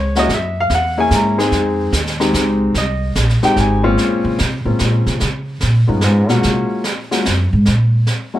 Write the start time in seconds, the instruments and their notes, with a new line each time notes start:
Already playing: upright bass C#2, grand piano C#5
0.15 grand piano A#3 C#4 E4 F#4, snare
0.19 grand piano D#5
0.29 upright bass F#2, brush sweep, kick, snare
0.34 grand piano E5
0.60 grand piano F5
0.70 upright bass E2, kick, snare
0.74 grand piano F#5
0.97 grand piano A#3 C#4 E4 G#4 G#5
1.11 upright bass G#2, kick, snare, hi-hat pedal
1.15 grand piano A#5
1.38 grand piano G#3 C4 D#4 G#4, snare
1.52 upright bass F2, brush sweep, kick, snare
1.92 upright bass D#2, kick, snare, hi-hat pedal
2.06 snare
2.20 grand piano G#3 C4 D#4 G4, snare
2.34 upright bass C#2, kick, snare, hi-hat pedal
2.74 upright bass C2, grand piano D#5, brush sweep, kick, snare
3.15 upright bass A#1, kick, snare, hi-hat pedal
3.29 snare
3.42 grand piano G#3 C4 D#4 G4 G5, muted upright bass stroke, snare
3.56 upright bass G#1, grand piano G#5, kick, snare
3.83 grand piano A#2 G#3 C4 C#4 F4
3.98 brush sweep, snare
4.25 upright bass C#3
4.39 upright bass C3, snare
4.65 upright bass A2, grand piano G#3 A#3 C4 C#4 F4
4.79 upright bass A#2, snare
5.06 upright bass C3, snare
5.20 upright bass C#3, brush sweep, snare
5.60 upright bass A#2, snare
5.87 upright bass G2, grand piano G#3 B3 C#4 D#4 F4
6.01 upright bass G#2, snare
6.29 upright bass B2, grand piano G#3 A#3 C#4 F4 F#4, snare
6.43 upright bass C3, brush sweep, snare
6.84 snare
7.11 grand piano G#3 A#3 C#4 F4 F#4, snare
7.25 upright bass F#2, snare
7.53 upright bass G#2
7.65 upright bass A#2, brush sweep, snare
8.07 snare
8.34 grand piano G#3 A#3 C#4 E4 F#4